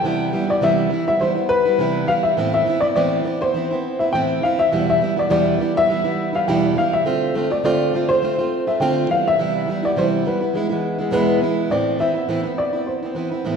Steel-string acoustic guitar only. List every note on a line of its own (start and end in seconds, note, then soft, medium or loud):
0.04 0.33 C3 medium
0.04 0.31 E3 medium
0.04 0.32 G3 medium
0.04 0.33 B3 medium
0.04 0.34 E4 medium
0.32 0.49 E3 medium
0.32 0.50 G3 medium
0.32 0.49 B3 medium
0.32 0.47 E4 medium
0.48 0.61 G3 soft
0.48 0.62 B3 soft
0.48 0.62 E4 soft
0.61 0.91 C3 medium
0.61 0.89 E3 medium
0.61 0.90 G3 medium
0.61 0.91 B3 medium
0.61 0.92 E4 medium
0.90 1.07 E3 medium
0.90 1.08 G3 medium
0.90 1.07 B3 medium
0.90 1.06 E4 medium
1.07 1.20 G3 soft
1.07 1.21 B3 soft
1.07 1.21 E4 soft
1.20 1.37 E3 medium
1.20 1.37 G3 medium
1.20 1.36 B3 medium
1.20 1.34 E4 medium
1.35 1.67 G3 soft
1.35 1.66 B3 soft
1.35 1.64 E4 soft
1.65 1.79 G3 soft
1.65 1.79 B3 soft
1.65 1.79 E4 medium
1.79 2.09 C3 medium
1.79 2.06 E3 medium
1.79 2.07 G3 medium
1.79 2.08 B3 medium
1.79 2.09 E4 medium
2.07 2.36 E3 medium
2.07 2.38 G3 medium
2.07 2.37 B3 medium
2.07 2.38 E4 medium
2.37 2.67 A2 medium
2.37 2.65 E3 medium
2.37 2.66 B3 medium
2.37 2.67 C4 medium
2.37 2.68 E4 medium
2.66 2.83 E3 medium
2.66 2.83 B3 medium
2.66 2.82 C4 medium
2.66 2.81 E4 medium
2.82 2.96 B3 soft
2.82 2.96 C4 soft
2.82 2.96 E4 medium
2.96 3.25 A2 medium
2.96 3.22 E3 loud
2.96 3.24 B3 medium
2.96 3.25 C4 medium
2.96 3.26 E4 medium
3.24 3.41 E3 medium
3.24 3.42 B3 medium
3.24 3.41 C4 medium
3.24 3.40 E4 medium
3.41 3.54 B3 soft
3.41 3.55 C4 soft
3.41 3.55 E4 medium
3.54 3.71 E3 medium
3.54 3.71 B3 medium
3.54 3.71 C4 medium
3.54 3.70 E4 medium
3.71 4.02 B3 medium
3.71 4.01 C4 medium
3.71 3.99 E4 medium
4.00 4.14 B3 soft
4.00 4.14 C4 soft
4.00 4.14 E4 medium
4.14 4.43 A2 medium
4.14 4.41 E3 medium
4.14 4.42 B3 medium
4.14 4.43 C4 medium
4.14 4.44 E4 loud
4.42 4.72 E3 medium
4.42 4.72 B3 medium
4.42 4.73 C4 medium
4.42 4.73 E4 medium
4.72 5.01 E2 medium
4.72 5.01 B2 medium
4.72 5.00 E3 medium
4.72 5.00 G3 medium
4.72 5.02 B3 medium
4.72 5.02 E4 medium
5.01 5.17 E3 medium
5.01 5.17 G3 medium
5.01 5.16 B3 medium
5.01 5.15 E4 medium
5.16 5.29 E3 soft
5.16 5.30 G3 soft
5.16 5.30 B3 medium
5.16 5.30 E4 medium
5.29 5.59 E2 medium
5.29 5.59 B2 medium
5.29 5.58 E3 medium
5.29 5.59 G3 medium
5.29 5.60 B3 medium
5.29 5.60 E4 medium
5.59 5.75 E3 medium
5.59 5.76 G3 medium
5.59 5.75 B3 medium
5.59 5.74 E4 medium
5.75 5.87 E3 soft
5.75 5.88 G3 soft
5.75 5.89 B3 soft
5.75 5.88 E4 soft
5.89 6.05 E3 medium
5.89 6.05 G3 medium
5.89 6.04 B3 medium
5.89 6.03 E4 medium
6.04 6.35 E3 soft
6.04 6.34 G3 soft
6.04 6.33 B3 medium
6.04 6.32 E4 medium
6.33 6.47 E3 soft
6.33 6.48 G3 soft
6.33 6.47 B3 medium
6.33 6.47 E4 medium
6.47 6.76 E2 medium
6.47 6.77 B2 medium
6.47 6.75 E3 loud
6.47 6.76 G3 medium
6.47 6.77 B3 loud
6.47 6.77 E4 medium
6.76 7.04 E3 medium
6.76 7.05 G3 medium
6.76 7.06 B3 medium
6.76 7.07 E4 medium
7.05 7.33 D3 medium
7.05 7.34 A3 medium
7.05 7.35 C4 medium
7.05 7.35 F4 loud
7.34 7.50 D3 medium
7.34 7.51 A3 medium
7.34 7.51 C4 medium
7.34 7.49 F4 medium
7.50 7.63 A3 soft
7.50 7.64 C4 soft
7.50 7.64 F4 medium
7.64 7.92 D3 medium
7.64 7.93 A3 medium
7.64 7.94 C4 medium
7.64 7.94 F4 loud
7.93 8.09 D3 medium
7.93 8.10 A3 medium
7.93 8.10 C4 medium
7.93 8.08 F4 medium
8.10 8.21 A3 soft
8.10 8.22 C4 soft
8.10 8.22 F4 medium
8.21 8.38 D3 medium
8.21 8.38 A3 medium
8.21 8.39 C4 medium
8.21 8.37 F4 medium
8.39 8.69 A3 soft
8.39 8.68 C4 medium
8.39 8.66 F4 medium
8.67 8.80 A3 soft
8.67 8.81 C4 medium
8.67 8.80 F4 medium
8.80 9.08 D3 medium
8.80 9.10 A3 medium
8.80 9.10 C4 loud
8.80 9.10 F4 medium
9.09 9.38 E3 medium
9.09 9.39 G3 medium
9.09 9.39 B3 medium
9.09 9.40 E4 medium
9.39 9.68 C3 medium
9.39 9.66 E3 medium
9.39 9.68 G3 medium
9.39 9.69 B3 medium
9.39 9.69 E4 medium
9.68 9.84 E3 medium
9.68 9.84 G3 medium
9.68 9.84 B3 medium
9.68 9.82 E4 medium
9.83 9.97 G3 soft
9.83 9.97 B3 soft
9.83 9.96 E4 medium
9.96 10.26 C3 medium
9.96 10.23 E3 medium
9.96 10.25 G3 medium
9.96 10.26 B3 medium
9.96 10.27 E4 medium
10.25 10.41 E3 medium
10.25 10.42 G3 medium
10.25 10.41 B3 medium
10.25 10.39 E4 medium
10.40 10.54 G3 soft
10.40 10.54 B3 soft
10.40 10.54 E4 soft
10.53 10.70 E3 medium
10.53 10.71 G#3 medium
10.53 10.69 B3 medium
10.53 10.68 E4 medium
10.69 11.00 E3 medium
10.69 11.00 G#3 medium
10.69 10.99 B3 medium
10.69 10.97 E4 medium
10.99 11.11 E3 medium
10.99 11.11 G#3 medium
10.99 11.12 B3 medium
10.99 11.12 E4 medium
11.11 11.41 E2 medium
11.11 11.41 B2 loud
11.11 11.39 E3 loud
11.11 11.41 G#3 medium
11.11 11.42 B3 loud
11.11 11.43 E4 loud
11.41 11.70 E3 medium
11.41 11.71 G#3 medium
11.41 11.71 B3 medium
11.41 11.71 E4 medium
11.70 12.00 A2 medium
11.70 11.97 E3 medium
11.70 11.99 B3 medium
11.70 12.00 C4 medium
11.70 12.01 E4 medium
11.99 12.16 E3 medium
11.99 12.16 B3 medium
11.99 12.15 C4 medium
11.99 12.13 E4 medium
12.14 12.28 B3 soft
12.14 12.29 C4 soft
12.14 12.29 E4 soft
12.28 12.45 A2 medium
12.28 12.45 E3 medium
12.28 12.45 B3 medium
12.28 12.44 C4 medium
12.28 12.42 E4 medium
12.43 12.75 B3 soft
12.43 12.73 C4 soft
12.43 12.72 E4 medium
12.73 13.05 B3 soft
12.73 13.03 C4 soft
12.73 13.01 E4 soft
13.03 13.15 B3 soft
13.03 13.16 C4 soft
13.03 13.17 E4 soft
13.15 13.32 E3 medium
13.15 13.33 B3 medium
13.15 13.32 C4 medium
13.15 13.30 E4 medium
13.32 13.45 B3 soft
13.32 13.45 C4 soft
13.32 13.46 E4 medium
13.45 13.56 A2 medium
13.45 13.56 E3 medium
13.45 13.56 B3 medium
13.45 13.56 C4 medium
13.45 13.56 E4 medium